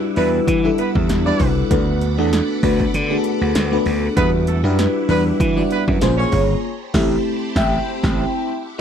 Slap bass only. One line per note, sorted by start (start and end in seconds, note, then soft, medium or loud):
0.17 0.39 E2 loud
0.48 0.69 E3 loud
0.95 1.05 E2 loud
1.09 1.31 E2 medium
1.40 1.61 C2 medium
1.71 2.18 D2 medium
2.18 2.40 E2 medium
2.63 2.85 D2 loud
2.94 3.16 D3 loud
3.41 3.51 D2 medium
3.55 3.77 D2 medium
3.86 4.08 D2 medium
4.17 4.64 E2 loud
4.64 4.85 F#2 medium
5.09 5.30 E2 loud
5.40 5.62 E3 loud
5.88 5.98 F#2 loud
6.02 6.23 A#1 loud
6.32 6.54 G1 medium
6.94 7.15 A1 loud
7.56 7.77 A1 loud
8.04 8.24 A1 loud